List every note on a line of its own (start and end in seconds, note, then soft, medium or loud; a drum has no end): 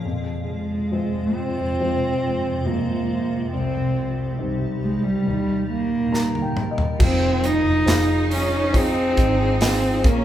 0.04 3.49 F2 medium
0.04 3.48 F2 soft
0.04 5.22 C3 medium
0.04 3.49 G#3 medium
0.04 3.48 F4 medium
0.04 3.49 C5 medium
0.49 1.37 G#3 medium
0.92 1.76 F3 soft
0.92 1.76 G#3 soft
0.92 1.76 C4 soft
1.36 2.68 C4 medium
1.80 2.64 F3 soft
1.80 2.64 G#3 soft
1.80 2.64 C4 soft
2.66 3.50 F3 soft
2.66 3.50 G#3 soft
2.66 3.52 A#3 medium
2.66 3.50 C4 soft
3.52 5.23 C2 soft
3.52 5.25 C2 medium
3.52 6.97 G3 medium
3.52 4.35 C4 medium
3.52 6.97 D#4 medium
3.52 5.25 G4 medium
4.39 5.23 D#3 soft
4.39 5.23 G3 soft
4.39 5.23 C4 soft
4.83 5.05 G#3 medium
5.04 5.69 G3 medium
5.26 6.98 D#2 medium
5.26 6.96 D#2 soft
5.26 6.98 A#2 medium
5.26 6.98 A#4 medium
5.71 6.53 A#3 medium
6.12 6.97 D#3 soft
6.12 6.97 G3 soft
6.12 6.97 A#3 soft
6.12 6.40 A#5 medium
6.12 snare soft
6.35 high tom soft
6.42 6.69 G5 soft
6.57 mid tom medium
6.71 6.98 D#5 soft
6.78 floor tom medium
6.98 7.61 F1 medium
6.98 10.00 F3 medium
6.98 7.47 C4 loud
6.98 9.99 D#4 medium
6.98 10.24 F4 medium
6.98 10.01 G#4 medium
6.98 10.01 C5 medium
6.98 10.01 G#5 medium
6.98 kick loud
6.98 crash loud
7.44 8.31 D#4 loud
7.44 hi-hat pedal medium
7.44 open hi-hat medium
7.64 7.85 F1 medium
7.86 9.13 F1 medium
7.86 8.71 F4 soft
7.86 8.71 G#4 soft
7.86 8.71 C5 soft
7.86 snare loud
7.86 hi-hat pedal medium
7.86 open hi-hat medium
8.31 8.78 C#4 medium
8.31 hi-hat pedal medium
8.31 open hi-hat medium
8.73 9.58 C4 soft
8.73 9.62 C4 loud
8.73 9.58 F4 soft
8.73 9.58 G#4 soft
8.73 kick medium
8.73 hi-hat pedal medium
8.73 open hi-hat medium
9.17 10.04 G#1 medium
9.17 kick medium
9.17 hi-hat pedal medium
9.17 open hi-hat medium
9.61 10.03 C4 soft
9.61 10.09 C4 medium
9.61 10.03 F4 soft
9.61 10.03 G#4 medium
9.61 snare loud
9.61 hi-hat pedal medium
9.61 open hi-hat medium
10.04 10.24 A#1 medium
10.04 10.24 A#3 medium
10.04 10.24 C#4 loud
10.04 10.24 A#4 medium
10.04 10.24 C#5 medium
10.04 10.24 A#5 medium
10.04 kick loud
10.04 hi-hat pedal medium
10.04 open hi-hat medium